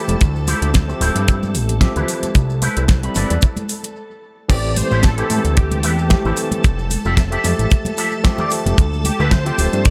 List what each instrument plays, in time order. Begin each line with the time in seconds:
Already playing: tine electric piano F3 A3 E4 G4, clean electric guitar E4 G4 B4, string machine A4 A5
0.08 analog synth bass F1, closed hi-hat, high conga, maracas
0.21 analog synth bass D2, kick, closed hi-hat, maracas
0.36 maracas
0.47 clean electric guitar E4 F4 G4 C5, open hi-hat, high conga, maracas
0.62 analog synth bass D2, closed hi-hat, maracas
0.74 kick, snare, closed hi-hat, maracas
0.88 tine electric piano F3 C4 G4 E5, muted clean electric guitar stroke, maracas
1.01 analog synth bass D1, clean electric guitar E4 F4 G4 C5, open hi-hat, high conga, maracas
1.16 analog synth bass G2, closed hi-hat, maracas
1.28 kick, closed hi-hat, maracas
1.43 high conga, maracas
1.55 analog synth bass A1, open hi-hat, maracas
1.69 closed hi-hat, maracas
1.81 tine electric piano F3 C4 G4 E5, kick, snare, closed hi-hat, high conga, maracas
1.96 analog synth bass D2, clean electric guitar E4 F4 G4 B4, closed hi-hat, low conga, maracas
2.08 open hi-hat, maracas
2.23 closed hi-hat, high conga, maracas
2.35 analog synth bass C2, kick, closed hi-hat, maracas
2.50 maracas
2.62 clean electric guitar E4 B4 C5, open hi-hat, high conga, maracas
2.77 analog synth bass C2, closed hi-hat, maracas
2.88 kick, snare, closed hi-hat, maracas
3.03 tine electric piano G3 C4 E4 B5, muted clean electric guitar stroke, closed hi-hat, maracas
3.15 analog synth bass G1, clean electric guitar E4 B4 D5, snare, open hi-hat, high conga, maracas
3.30 analog synth bass E2, closed hi-hat, maracas
3.41 kick, closed hi-hat, maracas
3.57 closed hi-hat, high conga, maracas
3.69 open hi-hat, maracas
3.84 closed hi-hat, maracas
4.49 analog synth bass A1, tine electric piano E3 A3 C4 G4, string machine A4 A5, analog synth lead D5, kick, closed hi-hat, crash, maracas
4.64 maracas
4.76 analog synth lead C5, open hi-hat, high conga, maracas
4.91 analog synth bass A1, clean electric guitar E4 G4 A4 C5, maracas
5.03 analog synth lead A4, kick, snare, closed hi-hat, maracas
5.17 tine electric piano E3 A3 C4 G4, clean electric guitar E4 G4 A4 C5, closed hi-hat, maracas
5.30 analog synth bass A2, open hi-hat, high conga, maracas
5.44 analog synth bass D2, closed hi-hat, muted conga, maracas
5.57 analog synth lead G4, kick, closed hi-hat, maracas
5.71 closed hi-hat, high conga, maracas
5.83 analog synth bass E2, clean electric guitar E4 G4 A4 B4, open hi-hat, maracas
5.98 maracas
6.09 tine electric piano E3 A3 C4 G4, muted clean electric guitar stroke, kick, snare, closed hi-hat, high conga, maracas
6.25 analog synth bass A1, clean electric guitar E4 G4 A4 C5, low conga, maracas
6.36 open hi-hat, maracas
6.51 muted clean electric guitar stroke, closed hi-hat, muted conga, high conga, maracas
6.63 analog synth bass F1, kick, closed hi-hat, maracas
6.79 maracas
6.90 open hi-hat, high conga, maracas
7.05 analog synth bass F1, clean electric guitar F4 G4 A4 E5, maracas
7.17 kick, snare, closed hi-hat, maracas
7.30 tine electric piano F3 A3 G4 E5, clean electric guitar F4 G4 A4 E5, closed hi-hat, maracas
7.44 analog synth bass F2, snare, open hi-hat, high conga, maracas
7.59 analog synth bass A1, closed hi-hat, maracas
7.70 kick, closed hi-hat, maracas
7.85 closed hi-hat, muted conga, high conga, maracas
7.97 clean electric guitar F4 G4 A4 E5, open hi-hat, maracas
8.12 maracas
8.23 tine electric piano F3 A3 G4 E5, muted clean electric guitar stroke, kick, snare, closed hi-hat, high conga, maracas
8.38 clean electric guitar F4 G4 A4 D5, muted conga, low conga, maracas
8.50 open hi-hat, maracas
8.66 analog synth bass F1, muted clean electric guitar stroke, closed hi-hat, high conga, maracas
8.78 analog synth bass D2, kick, closed hi-hat, maracas
8.93 maracas
9.05 analog synth lead G4, open hi-hat, high conga, maracas
9.19 analog synth bass D2, clean electric guitar F4 G4 C5 E5, analog synth lead B4, maracas
9.31 analog synth lead C5, kick, snare, closed hi-hat, maracas
9.45 tine electric piano F3 C4 G4 E5, clean electric guitar F4 G4 C5 G5, closed hi-hat, maracas
9.58 analog synth bass D1, open hi-hat, high conga, maracas
9.72 analog synth bass G2, closed hi-hat, muted conga, maracas
9.85 analog synth lead D5, kick, closed hi-hat, maracas